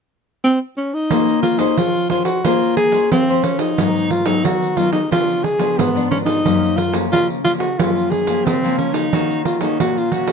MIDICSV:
0, 0, Header, 1, 4, 480
1, 0, Start_track
1, 0, Key_signature, -5, "minor"
1, 0, Tempo, 668896
1, 794, Time_signature, 4, 2, 24, 8
1, 7407, End_track
2, 0, Start_track
2, 0, Title_t, "Alto saxophone"
2, 0, Program_c, 0, 65
2, 313, Note_on_c, 0, 60, 93
2, 421, Note_off_c, 0, 60, 0
2, 554, Note_on_c, 0, 61, 85
2, 674, Note_on_c, 0, 63, 103
2, 685, Note_off_c, 0, 61, 0
2, 1018, Note_off_c, 0, 63, 0
2, 1023, Note_on_c, 0, 65, 89
2, 1136, Note_on_c, 0, 63, 87
2, 1147, Note_off_c, 0, 65, 0
2, 1276, Note_on_c, 0, 65, 99
2, 1287, Note_off_c, 0, 63, 0
2, 1503, Note_off_c, 0, 65, 0
2, 1508, Note_on_c, 0, 65, 79
2, 1611, Note_off_c, 0, 65, 0
2, 1615, Note_on_c, 0, 66, 90
2, 1755, Note_on_c, 0, 65, 93
2, 1766, Note_off_c, 0, 66, 0
2, 1983, Note_off_c, 0, 65, 0
2, 1987, Note_on_c, 0, 68, 102
2, 2213, Note_off_c, 0, 68, 0
2, 2236, Note_on_c, 0, 60, 101
2, 2468, Note_on_c, 0, 61, 85
2, 2479, Note_off_c, 0, 60, 0
2, 2577, Note_on_c, 0, 63, 101
2, 2588, Note_off_c, 0, 61, 0
2, 2948, Note_on_c, 0, 65, 85
2, 2958, Note_off_c, 0, 63, 0
2, 3057, Note_on_c, 0, 63, 82
2, 3068, Note_off_c, 0, 65, 0
2, 3192, Note_on_c, 0, 66, 96
2, 3203, Note_off_c, 0, 63, 0
2, 3422, Note_on_c, 0, 65, 94
2, 3433, Note_off_c, 0, 66, 0
2, 3527, Note_off_c, 0, 65, 0
2, 3532, Note_on_c, 0, 63, 76
2, 3652, Note_off_c, 0, 63, 0
2, 3673, Note_on_c, 0, 65, 90
2, 3902, Note_on_c, 0, 68, 90
2, 3913, Note_off_c, 0, 65, 0
2, 4149, Note_on_c, 0, 59, 83
2, 4160, Note_off_c, 0, 68, 0
2, 4379, Note_off_c, 0, 59, 0
2, 4384, Note_on_c, 0, 61, 72
2, 4439, Note_off_c, 0, 61, 0
2, 4489, Note_on_c, 0, 63, 96
2, 4857, Note_on_c, 0, 65, 89
2, 4867, Note_off_c, 0, 63, 0
2, 4984, Note_off_c, 0, 65, 0
2, 5110, Note_on_c, 0, 65, 89
2, 5218, Note_off_c, 0, 65, 0
2, 5341, Note_on_c, 0, 65, 80
2, 5397, Note_off_c, 0, 65, 0
2, 5449, Note_on_c, 0, 66, 83
2, 5586, Note_on_c, 0, 65, 83
2, 5597, Note_off_c, 0, 66, 0
2, 5818, Note_on_c, 0, 68, 97
2, 5829, Note_off_c, 0, 65, 0
2, 6066, Note_on_c, 0, 60, 85
2, 6077, Note_off_c, 0, 68, 0
2, 6298, Note_off_c, 0, 60, 0
2, 6303, Note_on_c, 0, 61, 81
2, 6411, Note_on_c, 0, 63, 97
2, 6422, Note_off_c, 0, 61, 0
2, 6775, Note_off_c, 0, 63, 0
2, 6779, Note_on_c, 0, 65, 78
2, 6895, Note_on_c, 0, 63, 84
2, 6906, Note_off_c, 0, 65, 0
2, 7024, Note_off_c, 0, 63, 0
2, 7034, Note_on_c, 0, 66, 91
2, 7162, Note_on_c, 0, 65, 82
2, 7173, Note_off_c, 0, 66, 0
2, 7261, Note_on_c, 0, 66, 87
2, 7272, Note_off_c, 0, 65, 0
2, 7407, Note_off_c, 0, 66, 0
2, 7407, End_track
3, 0, Start_track
3, 0, Title_t, "Nylon-string guitar"
3, 0, Program_c, 1, 24
3, 795, Note_on_c, 1, 58, 72
3, 795, Note_on_c, 1, 61, 58
3, 798, Note_on_c, 1, 68, 54
3, 801, Note_on_c, 1, 72, 67
3, 1115, Note_off_c, 1, 61, 0
3, 1117, Note_off_c, 1, 68, 0
3, 1118, Note_off_c, 1, 72, 0
3, 1140, Note_on_c, 1, 61, 59
3, 1143, Note_on_c, 1, 68, 53
3, 1147, Note_on_c, 1, 72, 68
3, 1250, Note_off_c, 1, 58, 0
3, 1276, Note_on_c, 1, 53, 60
3, 1468, Note_off_c, 1, 61, 0
3, 1469, Note_off_c, 1, 68, 0
3, 1471, Note_off_c, 1, 72, 0
3, 1507, Note_on_c, 1, 61, 53
3, 1510, Note_on_c, 1, 68, 49
3, 1515, Note_on_c, 1, 72, 61
3, 1711, Note_off_c, 1, 61, 0
3, 1713, Note_off_c, 1, 68, 0
3, 1715, Note_off_c, 1, 72, 0
3, 1730, Note_off_c, 1, 53, 0
3, 1755, Note_on_c, 1, 58, 68
3, 1757, Note_on_c, 1, 61, 56
3, 1759, Note_on_c, 1, 68, 56
3, 1760, Note_on_c, 1, 72, 66
3, 1979, Note_off_c, 1, 61, 0
3, 1980, Note_off_c, 1, 68, 0
3, 1981, Note_off_c, 1, 72, 0
3, 2099, Note_on_c, 1, 61, 60
3, 2102, Note_on_c, 1, 68, 62
3, 2107, Note_on_c, 1, 72, 62
3, 2210, Note_off_c, 1, 58, 0
3, 2235, Note_on_c, 1, 53, 65
3, 2307, Note_off_c, 1, 61, 0
3, 2309, Note_off_c, 1, 68, 0
3, 2311, Note_off_c, 1, 72, 0
3, 2363, Note_on_c, 1, 61, 65
3, 2365, Note_on_c, 1, 68, 61
3, 2368, Note_on_c, 1, 72, 67
3, 2679, Note_off_c, 1, 61, 0
3, 2680, Note_off_c, 1, 68, 0
3, 2681, Note_off_c, 1, 72, 0
3, 2689, Note_off_c, 1, 53, 0
3, 2710, Note_on_c, 1, 54, 58
3, 2713, Note_on_c, 1, 44, 69
3, 2715, Note_on_c, 1, 59, 60
3, 2719, Note_on_c, 1, 63, 59
3, 3032, Note_off_c, 1, 54, 0
3, 3035, Note_off_c, 1, 59, 0
3, 3037, Note_off_c, 1, 63, 0
3, 3049, Note_on_c, 1, 54, 60
3, 3053, Note_on_c, 1, 59, 54
3, 3058, Note_on_c, 1, 63, 61
3, 3168, Note_off_c, 1, 44, 0
3, 3187, Note_on_c, 1, 51, 64
3, 3382, Note_off_c, 1, 54, 0
3, 3384, Note_off_c, 1, 59, 0
3, 3385, Note_off_c, 1, 63, 0
3, 3423, Note_on_c, 1, 54, 53
3, 3428, Note_on_c, 1, 59, 58
3, 3429, Note_on_c, 1, 63, 57
3, 3569, Note_off_c, 1, 54, 0
3, 3570, Note_off_c, 1, 59, 0
3, 3571, Note_off_c, 1, 63, 0
3, 3645, Note_off_c, 1, 51, 0
3, 3665, Note_on_c, 1, 49, 63
3, 3667, Note_on_c, 1, 53, 56
3, 3671, Note_on_c, 1, 59, 60
3, 3671, Note_on_c, 1, 62, 57
3, 3894, Note_off_c, 1, 53, 0
3, 3895, Note_off_c, 1, 59, 0
3, 3896, Note_off_c, 1, 62, 0
3, 4009, Note_on_c, 1, 53, 64
3, 4011, Note_on_c, 1, 59, 63
3, 4015, Note_on_c, 1, 62, 67
3, 4124, Note_off_c, 1, 49, 0
3, 4143, Note_on_c, 1, 44, 76
3, 4222, Note_off_c, 1, 53, 0
3, 4222, Note_off_c, 1, 59, 0
3, 4224, Note_off_c, 1, 62, 0
3, 4270, Note_on_c, 1, 53, 69
3, 4272, Note_on_c, 1, 59, 67
3, 4277, Note_on_c, 1, 62, 70
3, 4592, Note_off_c, 1, 53, 0
3, 4594, Note_off_c, 1, 59, 0
3, 4595, Note_off_c, 1, 62, 0
3, 4603, Note_off_c, 1, 44, 0
3, 4627, Note_on_c, 1, 42, 72
3, 4630, Note_on_c, 1, 53, 54
3, 4634, Note_on_c, 1, 58, 53
3, 4634, Note_on_c, 1, 61, 65
3, 4855, Note_off_c, 1, 53, 0
3, 4856, Note_off_c, 1, 58, 0
3, 4857, Note_off_c, 1, 61, 0
3, 4968, Note_on_c, 1, 53, 58
3, 4972, Note_on_c, 1, 58, 56
3, 4972, Note_on_c, 1, 61, 60
3, 5086, Note_off_c, 1, 42, 0
3, 5112, Note_on_c, 1, 49, 71
3, 5302, Note_off_c, 1, 53, 0
3, 5302, Note_off_c, 1, 58, 0
3, 5303, Note_off_c, 1, 61, 0
3, 5341, Note_on_c, 1, 53, 58
3, 5345, Note_on_c, 1, 58, 56
3, 5348, Note_on_c, 1, 61, 61
3, 5487, Note_off_c, 1, 53, 0
3, 5489, Note_off_c, 1, 58, 0
3, 5490, Note_off_c, 1, 61, 0
3, 5568, Note_off_c, 1, 49, 0
3, 5593, Note_on_c, 1, 42, 65
3, 5596, Note_on_c, 1, 53, 53
3, 5600, Note_on_c, 1, 61, 58
3, 5601, Note_on_c, 1, 58, 51
3, 5915, Note_off_c, 1, 53, 0
3, 5916, Note_off_c, 1, 58, 0
3, 5917, Note_off_c, 1, 61, 0
3, 5932, Note_on_c, 1, 53, 65
3, 5935, Note_on_c, 1, 58, 59
3, 5938, Note_on_c, 1, 61, 67
3, 6049, Note_off_c, 1, 42, 0
3, 6069, Note_on_c, 1, 49, 68
3, 6143, Note_off_c, 1, 53, 0
3, 6145, Note_off_c, 1, 58, 0
3, 6146, Note_off_c, 1, 61, 0
3, 6194, Note_on_c, 1, 53, 66
3, 6198, Note_on_c, 1, 58, 71
3, 6201, Note_on_c, 1, 61, 69
3, 6515, Note_off_c, 1, 53, 0
3, 6517, Note_off_c, 1, 58, 0
3, 6518, Note_off_c, 1, 61, 0
3, 6527, Note_off_c, 1, 49, 0
3, 6548, Note_on_c, 1, 51, 71
3, 6550, Note_on_c, 1, 58, 58
3, 6552, Note_on_c, 1, 61, 53
3, 6555, Note_on_c, 1, 66, 69
3, 6872, Note_off_c, 1, 58, 0
3, 6874, Note_off_c, 1, 61, 0
3, 6875, Note_off_c, 1, 66, 0
3, 6897, Note_on_c, 1, 58, 53
3, 6900, Note_on_c, 1, 61, 56
3, 6905, Note_on_c, 1, 66, 61
3, 7007, Note_off_c, 1, 51, 0
3, 7035, Note_on_c, 1, 46, 66
3, 7226, Note_off_c, 1, 58, 0
3, 7228, Note_off_c, 1, 61, 0
3, 7230, Note_off_c, 1, 66, 0
3, 7263, Note_on_c, 1, 58, 55
3, 7267, Note_on_c, 1, 61, 57
3, 7271, Note_on_c, 1, 66, 62
3, 7407, Note_off_c, 1, 46, 0
3, 7407, Note_off_c, 1, 58, 0
3, 7407, Note_off_c, 1, 61, 0
3, 7407, Note_off_c, 1, 66, 0
3, 7407, End_track
4, 0, Start_track
4, 0, Title_t, "Pandeiro"
4, 793, Note_on_c, 9, 54, 82
4, 865, Note_off_c, 9, 54, 0
4, 923, Note_on_c, 9, 54, 30
4, 994, Note_off_c, 9, 54, 0
4, 1025, Note_on_c, 9, 54, 60
4, 1097, Note_off_c, 9, 54, 0
4, 1139, Note_on_c, 9, 54, 62
4, 1211, Note_off_c, 9, 54, 0
4, 1273, Note_on_c, 9, 54, 70
4, 1345, Note_off_c, 9, 54, 0
4, 1403, Note_on_c, 9, 54, 32
4, 1475, Note_off_c, 9, 54, 0
4, 1505, Note_on_c, 9, 54, 59
4, 1577, Note_off_c, 9, 54, 0
4, 1615, Note_on_c, 9, 54, 64
4, 1687, Note_off_c, 9, 54, 0
4, 1755, Note_on_c, 9, 54, 80
4, 1827, Note_off_c, 9, 54, 0
4, 1884, Note_on_c, 9, 54, 28
4, 1955, Note_off_c, 9, 54, 0
4, 1986, Note_on_c, 9, 54, 61
4, 2058, Note_off_c, 9, 54, 0
4, 2096, Note_on_c, 9, 54, 60
4, 2168, Note_off_c, 9, 54, 0
4, 2235, Note_on_c, 9, 54, 74
4, 2307, Note_off_c, 9, 54, 0
4, 2361, Note_on_c, 9, 54, 31
4, 2433, Note_off_c, 9, 54, 0
4, 2465, Note_on_c, 9, 54, 59
4, 2537, Note_off_c, 9, 54, 0
4, 2576, Note_on_c, 9, 54, 65
4, 2648, Note_off_c, 9, 54, 0
4, 2714, Note_on_c, 9, 54, 79
4, 2786, Note_off_c, 9, 54, 0
4, 2840, Note_on_c, 9, 54, 31
4, 2912, Note_off_c, 9, 54, 0
4, 2945, Note_on_c, 9, 54, 57
4, 3017, Note_off_c, 9, 54, 0
4, 3054, Note_on_c, 9, 54, 70
4, 3126, Note_off_c, 9, 54, 0
4, 3192, Note_on_c, 9, 54, 81
4, 3264, Note_off_c, 9, 54, 0
4, 3319, Note_on_c, 9, 54, 34
4, 3391, Note_off_c, 9, 54, 0
4, 3421, Note_on_c, 9, 54, 57
4, 3493, Note_off_c, 9, 54, 0
4, 3535, Note_on_c, 9, 54, 60
4, 3607, Note_off_c, 9, 54, 0
4, 3676, Note_on_c, 9, 54, 80
4, 3748, Note_off_c, 9, 54, 0
4, 3803, Note_on_c, 9, 54, 30
4, 3875, Note_off_c, 9, 54, 0
4, 3905, Note_on_c, 9, 54, 56
4, 3976, Note_off_c, 9, 54, 0
4, 4015, Note_on_c, 9, 54, 64
4, 4087, Note_off_c, 9, 54, 0
4, 4155, Note_on_c, 9, 54, 76
4, 4227, Note_off_c, 9, 54, 0
4, 4283, Note_on_c, 9, 54, 35
4, 4355, Note_off_c, 9, 54, 0
4, 4388, Note_on_c, 9, 54, 60
4, 4460, Note_off_c, 9, 54, 0
4, 4495, Note_on_c, 9, 54, 65
4, 4567, Note_off_c, 9, 54, 0
4, 4632, Note_on_c, 9, 54, 76
4, 4704, Note_off_c, 9, 54, 0
4, 4761, Note_on_c, 9, 54, 33
4, 4833, Note_off_c, 9, 54, 0
4, 4864, Note_on_c, 9, 54, 59
4, 4936, Note_off_c, 9, 54, 0
4, 4977, Note_on_c, 9, 54, 71
4, 5049, Note_off_c, 9, 54, 0
4, 5117, Note_on_c, 9, 54, 74
4, 5188, Note_off_c, 9, 54, 0
4, 5241, Note_on_c, 9, 54, 29
4, 5313, Note_off_c, 9, 54, 0
4, 5347, Note_on_c, 9, 54, 59
4, 5418, Note_off_c, 9, 54, 0
4, 5455, Note_on_c, 9, 54, 59
4, 5527, Note_off_c, 9, 54, 0
4, 5593, Note_on_c, 9, 54, 85
4, 5665, Note_off_c, 9, 54, 0
4, 5722, Note_on_c, 9, 54, 32
4, 5794, Note_off_c, 9, 54, 0
4, 5824, Note_on_c, 9, 54, 52
4, 5896, Note_off_c, 9, 54, 0
4, 5936, Note_on_c, 9, 54, 66
4, 6008, Note_off_c, 9, 54, 0
4, 6076, Note_on_c, 9, 54, 78
4, 6147, Note_off_c, 9, 54, 0
4, 6203, Note_on_c, 9, 54, 30
4, 6275, Note_off_c, 9, 54, 0
4, 6305, Note_on_c, 9, 54, 53
4, 6376, Note_off_c, 9, 54, 0
4, 6416, Note_on_c, 9, 54, 65
4, 6488, Note_off_c, 9, 54, 0
4, 6551, Note_on_c, 9, 54, 78
4, 6623, Note_off_c, 9, 54, 0
4, 6680, Note_on_c, 9, 54, 30
4, 6752, Note_off_c, 9, 54, 0
4, 6784, Note_on_c, 9, 54, 61
4, 6855, Note_off_c, 9, 54, 0
4, 6894, Note_on_c, 9, 54, 67
4, 6966, Note_off_c, 9, 54, 0
4, 7033, Note_on_c, 9, 54, 73
4, 7105, Note_off_c, 9, 54, 0
4, 7158, Note_on_c, 9, 54, 31
4, 7230, Note_off_c, 9, 54, 0
4, 7260, Note_on_c, 9, 54, 53
4, 7331, Note_off_c, 9, 54, 0
4, 7374, Note_on_c, 9, 54, 68
4, 7407, Note_off_c, 9, 54, 0
4, 7407, End_track
0, 0, End_of_file